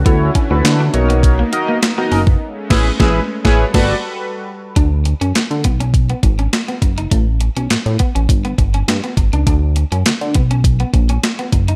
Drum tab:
CC |----------------|--x------x------|----------------|----------------|
HH |x-x-x-xxx-x-x-o-|----------------|x-xxxxxxxxxxxxxx|x-xxxxxxxxxxxxxx|
CP |----x-------x---|----------------|----x-------x---|----x-------x---|
SD |----o-------o---|--o-o--o-o------|----o-------o---|----o-------o---|
BD |o-o-----o------o|--o-o--o-o------|o-----o-o-o---o-|o-----o-o-o---o-|

CC |----------------|
HH |x-xxxxxxxxxxxxxx|
CP |----x-------x---|
SD |----o-------o---|
BD |o-----o-o-o---o-|